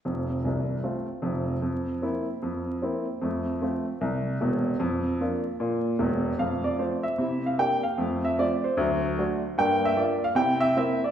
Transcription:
0.05 F1 F2
0.44 C1 C2
0.83 A3 C4 F4
1.22 F1 F2
1.62 F2
2.02 A#3 C4 E4
2.42 F2
2.82 A#3 C4 E4
3.21 F2 A3
3.62 A3 C4 F4
4.01 C2
4.41 E1 E2
4.80 F2
5.21 A#3 D4 F4
5.60 A#2
5.99 E1 E2
6.38 F2 A3 F5
6.64 D5
6.79 A3 C4 F4 C5
7.03 E5
7.18 C3 E4
7.46 F5
7.58 A#3 D4 G4 G5
7.83 F5
7.98 F2 A3
8.25 E5
8.38 A3 C4 F4 D5
8.64 C5
8.77 D2 F#3
9.18 A3 D4 F#4
9.58 G2 A#3 G5
9.85 E5
9.96 A#3 D4 F4 D5
10.24 F5
10.35 C3 E4 G5
10.61 E5
10.77 A#3 C4 E4 E5
11.04 D5

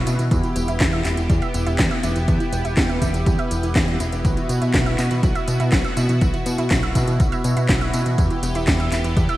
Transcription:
Already playing: B3 E4 F#4
0.07 B2 E4, closed hi-hat, tambourine
0.19 B2 E3, closed hi-hat, tambourine
0.31 E2 E3 E4 G4, kick, closed hi-hat, tambourine
0.43 E3, closed hi-hat, tambourine
0.56 E1 B3, closed hi-hat, tambourine
0.68 E1 E4, closed hi-hat, tambourine
0.80 E2 G3, kick, snare, clap, closed hi-hat, tambourine
0.93 E5, closed hi-hat, tambourine
1.05 E1 E4, clap, closed hi-hat, tambourine
1.17 E1 E3, closed hi-hat, tambourine
1.30 E2 G3, kick, closed hi-hat, tambourine
1.42 E5, closed hi-hat, tambourine
1.54 E1 B3, closed hi-hat, tambourine
1.67 E1 E4, closed hi-hat, tambourine
1.79 E2 G3, kick, snare, clap, closed hi-hat, tambourine
1.91 E5, closed hi-hat, tambourine
2.03 E1 E4, closed hi-hat, tambourine
2.16 E1 E3, closed hi-hat, tambourine
2.28 E2 E3, kick, closed hi-hat, tambourine
2.40 E3, closed hi-hat, tambourine
2.53 E1 B3, closed hi-hat, tambourine
2.65 E1 E4, closed hi-hat, tambourine
2.77 E2 G3, kick, snare, clap, closed hi-hat, tambourine
2.89 E5, closed hi-hat, tambourine
3.02 E1 E4, kick, closed hi-hat, tambourine
3.14 E1 E3, closed hi-hat, tambourine
3.26 E2 G3, kick, closed hi-hat, tambourine
3.39 E5, closed hi-hat, tambourine
3.51 E1 E3, closed hi-hat, tambourine
3.63 E1 E3, closed hi-hat, tambourine
3.76 E2 E4, kick, snare, clap, closed hi-hat, tambourine
3.88 G3, closed hi-hat, tambourine
4.00 E1 E4, closed hi-hat, tambourine
4.12 E1 B3, closed hi-hat, tambourine
4.25 B1 E3 E4 F#4, kick, closed hi-hat, tambourine
4.37 E3, closed hi-hat, tambourine
4.49 B2 B3, closed hi-hat, tambourine
4.62 B2 E4, closed hi-hat, tambourine
4.74 B1 F#3, kick, snare, clap, closed hi-hat, tambourine
4.86 E5, closed hi-hat, tambourine
4.98 B2 E4, clap, closed hi-hat, tambourine
5.11 B2 E3, closed hi-hat, tambourine
5.23 B1 F#3, kick, closed hi-hat, tambourine
5.35 E5, closed hi-hat, tambourine
5.48 B2 B3, closed hi-hat, tambourine
5.60 B2 E4, closed hi-hat, tambourine
5.72 B1 F#3, kick, snare, clap, closed hi-hat, tambourine
5.84 E5, closed hi-hat, tambourine
5.97 B2 E4, closed hi-hat, tambourine
6.09 B2 E3, closed hi-hat, tambourine
6.21 B1 E3, kick, closed hi-hat, tambourine
6.34 E3, closed hi-hat, tambourine
6.46 B2 B3, closed hi-hat, tambourine
6.58 B2 E4, closed hi-hat, tambourine
6.71 B1 F#3, kick, snare, clap, closed hi-hat, tambourine
6.83 E5, closed hi-hat, tambourine
6.95 B2 E4, kick, closed hi-hat, tambourine
7.07 B2 E3, closed hi-hat, tambourine
7.20 B1 F#3, kick, closed hi-hat, tambourine
7.32 E5, closed hi-hat, tambourine
7.44 B2 B3, closed hi-hat, tambourine
7.57 B2 E4, closed hi-hat, tambourine
7.69 B1 F#3, kick, snare, clap, closed hi-hat, tambourine
7.81 E5, closed hi-hat, tambourine
7.94 B2 E4, closed hi-hat, tambourine
8.06 B2 E3, closed hi-hat, tambourine
8.18 E2 E3 B3 G4, kick, closed hi-hat, tambourine
8.31 E3, closed hi-hat, tambourine
8.43 E1 B3, closed hi-hat, tambourine
8.55 E1 E4, closed hi-hat, tambourine
8.67 E2 G3, kick, snare, clap, closed hi-hat, tambourine
8.80 E5, closed hi-hat, tambourine
8.92 E1 E4, clap, closed hi-hat, tambourine
9.04 E1 E3, closed hi-hat, tambourine
9.17 E2 G3, kick, closed hi-hat, tambourine
9.29 E5, closed hi-hat, tambourine

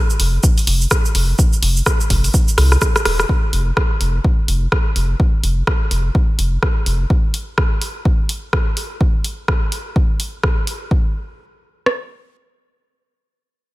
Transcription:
0.10 cabasa
0.20 F1, open hi-hat
0.43 kick, cabasa
0.58 open hi-hat, cabasa
0.67 F1, open hi-hat
0.81 cabasa
0.91 kick, cross-stick, cabasa
1.05 cabasa
1.15 F1, open hi-hat
1.39 kick, cabasa
1.53 cabasa
1.62 F1, open hi-hat
1.77 cabasa
1.86 kick, cross-stick, cabasa
2.00 cabasa
2.10 F1, kick, open hi-hat
2.24 open hi-hat, cabasa
2.34 kick, cabasa
2.48 cabasa
2.58 C2, cross-stick, open hi-hat
2.72 cross-stick, cabasa
2.82 kick, cross-stick, cabasa
2.96 cross-stick, cabasa
3.05 D#1, cross-stick, open hi-hat
3.20 cross-stick, cabasa
3.29 kick
3.53 F1, open hi-hat
3.77 kick, cross-stick
4.01 F1, open hi-hat
4.24 kick
4.48 F1, open hi-hat
4.72 kick, cross-stick
4.96 F1, open hi-hat
5.20 kick
5.43 F1, open hi-hat
5.67 kick, cross-stick
5.91 F1, open hi-hat
6.15 kick
6.39 F1, open hi-hat
6.63 kick, cross-stick
6.86 F1, open hi-hat
7.10 kick
7.34 open hi-hat
7.58 kick, cross-stick
7.82 open hi-hat
8.05 kick
8.29 open hi-hat
8.53 kick, cross-stick
8.77 open hi-hat
9.01 kick
9.24 open hi-hat
9.48 kick, cross-stick
9.72 open hi-hat
9.96 kick
10.20 open hi-hat
10.44 kick, cross-stick
10.67 open hi-hat
10.91 kick
11.86 cross-stick

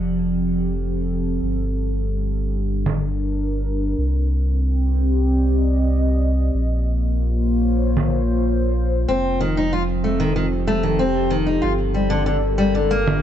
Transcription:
Already playing: F1 F3 C4 G4
0.02 A4
1.42 G1 G3
2.27 D4
2.58 A#4
2.86 low conga
3.98 C2 C4
4.24 G4
5.14 D5 D#5
6.53 A#1 A#3
6.69 F4
6.98 C5
7.27 C#5
7.97 low conga
9.08 F1 F3 C4
9.26 C4
9.41 D#3
9.57 D#4
9.73 F4
9.94 A4
10.04 A3
10.20 D#3 G4
10.36 D#3
10.67 A3
10.83 D#3
10.99 C4
11.30 D#3
11.47 D#4
11.62 G1 G3 F4
11.94 G3
12.10 D3 A#4
12.26 D3
12.44 D4
12.58 G3
12.75 D3
12.91 A#3
13.07 low conga

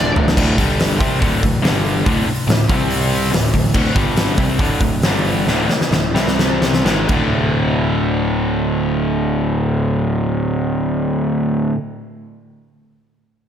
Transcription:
Already playing: D1 D2 A2 D3 D5
0.15 D1, floor tom
0.28 snare
0.37 D1 D2 A2 D3, kick, crash
0.58 G1 G2 D3 G3, kick, open hi-hat
0.80 snare, open hi-hat
0.99 C2 C3 G3 C4, kick, open hi-hat
1.19 D1 D2 A2 D3, kick, open hi-hat
1.42 D1 D2 A2, kick, open hi-hat
1.62 G1 G2 D3 G3, snare, open hi-hat
1.86 open hi-hat
2.04 D1 D2 A2 D3, kick, open hi-hat
2.26 muted overdriven electric guitar stroke, muted picked electric bass stroke, open hi-hat
2.47 D1 D2 A2, snare, open hi-hat
2.69 C2 C3 G3 C4, kick, open hi-hat
2.90 open hi-hat
3.11 open hi-hat
3.32 D1 D2 A2, snare, open hi-hat
3.54 D1 D2 A2, kick, open hi-hat
3.74 D1 D2 A2 D3, kick, crash
3.95 G1 G2 D3 G3, kick, open hi-hat
4.16 snare, open hi-hat
4.38 C2 C3 G3 C4, kick, open hi-hat
4.59 D1 D2 A2 D3, kick, open hi-hat
4.80 D1 D2 A2, kick, open hi-hat
5.02 G1 G2 D3 G3, snare, open hi-hat
5.25 open hi-hat
5.47 D1 D2 A2 D3, snare
5.69 muted picked electric bass stroke, muted overdriven electric guitar stroke, snare
5.81 snare
5.91 D1 D2 A2, snare
6.14 C2 C3 G3 C4, snare
6.28 snare
6.39 snare
6.62 snare
6.73 snare
6.85 G#1 G#2 D#3 G#3, snare
7.09 D1 D2 A2 D3, kick, crash

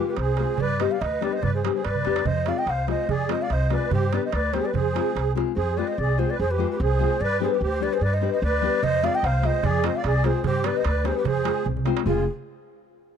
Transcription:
Already playing: G#3 C4 F4
0.00 G#4
0.07 G4 B4, darbuka tek
0.16 C2 G#4 C5, darbuka tek
0.28 darbuka tek
0.37 G#3 C4 F4 G#4, darbuka tek
0.58 G2 B4 D5, darbuka dum
0.70 darbuka tek
0.79 G3 B3 D4 G4 C5 D#5, darbuka tek
0.91 D5 F5, darbuka tek
1.01 D2 B4 D#5, darbuka tek
1.12 darbuka tek
1.21 G3 B3 D4 G4 B4 D5, darbuka tek
1.33 C5 D#5
1.42 G2 B4 D5, darbuka dum
1.54 G#4 C5
1.64 G3 B3 D4 G4, darbuka tek
1.75 G#4 C5
1.83 G2 B4 D5, darbuka tek
1.95 darbuka dum
2.05 F2 G3 B3 D4 G4, darbuka tek
2.16 darbuka tek
2.25 F2 C5 D#5, darbuka dum
2.37 darbuka tek
2.46 G#3 C4 F4 G#4 D5 F5, darbuka tek
2.58 D#5 G5
2.66 C2 C5 F5, darbuka tek
2.78 darbuka tek
2.87 G#3 C4 F4 G#4 C5 D#5, darbuka tek
3.09 F2 G#4 D5, darbuka dum
3.19 darbuka tek
3.29 G#3 C4 F4 G#4 C5 D#5, darbuka tek
3.41 D5 F5, darbuka tek
3.50 C2 C5 D#5, darbuka tek
3.61 darbuka tek
3.70 G#3 C4 F4 G#4 B4 D5, darbuka tek
3.91 G2 G4 C5, darbuka dum
4.12 G3 B3 D4 G4 B4 D5, darbuka tek
4.23 C5 D#5, darbuka tek
4.32 D2 B4 D5, darbuka tek
4.44 darbuka tek
4.53 G3 B3 D4 G4 G#4 C5, darbuka tek
4.65 B4 D5
4.74 F2 G#4 C5, darbuka dum
4.95 G#3 C4 F4 G#4, darbuka tek
5.07 darbuka tek
5.16 C2, darbuka tek
5.28 darbuka tek
5.35 G#3 C4 F4 G#4, darbuka tek
5.48 darbuka tek
5.56 F2 G#4 C5
5.77 G#3 C4 F4 G#4 B4 C5 D5
5.88 C5 D#5
5.98 C2 G#4 D5
6.18 G#3 C4 F4 G#4 C5
6.30 B4 D5
6.40 F2 G#4 C5
6.51 G4 B4
6.58 G#3 C4 F4 G#4 C5
6.71 G4 B4
6.80 C2 G#4 C5
6.99 G#3 C4 F4 G#4 C5
7.20 G2 B4 D5
7.40 G3 B3 D4 G4 G#4 B4 C5
7.52 G4 B4
7.61 D2 G4 C5
7.80 G3 B3 D4 G4 B4 D5
7.93 G#4 C5
8.01 G2 B4 D5
8.14 C5 D#5
8.21 G3 B3 D4 G4 B4
8.33 C5 D#5
8.42 D2 B4 D5
8.61 G3 B3 D4 G4 B4
8.83 F2 C5 D#5, darbuka dum
8.94 darbuka tek
9.02 G#3 C4 F4 G#4 C5 D5 F5, darbuka tek
9.14 D#5 G5, darbuka tek
9.23 C2 C5 F5, darbuka tek
9.34 darbuka tek
9.42 G#3 C4 F4 G#4 C5 D#5, darbuka tek
9.63 F2 G#4 D5, darbuka dum
9.74 darbuka tek
9.83 G#3 C4 F4 G#4 C5 D#5, darbuka tek
9.95 D5 F5, darbuka tek
10.04 C2 G#4 D5, darbuka tek
10.23 G#3 C4 F4 G#4 C5, darbuka tek
10.44 G2 G4 C5, darbuka dum
10.55 darbuka tek
10.63 G3 B3 D4 G4 B4 D5, darbuka tek
10.75 C5 D#5, darbuka tek
10.84 D2 B4 D5, darbuka tek
10.94 darbuka tek
11.04 G3 B3 D4 G4 G#4 B4 C5, darbuka tek
11.17 G4 B4
11.24 F2 G#4 C5, darbuka dum
11.44 G#3 C4 F4 G#4 C5, darbuka tek
11.65 C2, darbuka dum
11.77 darbuka dum
11.85 G#3 C4 F4 G#4 C5, darbuka tek
11.97 darbuka tek
12.06 F1 G#3 C4 F4 G#4, darbuka dum

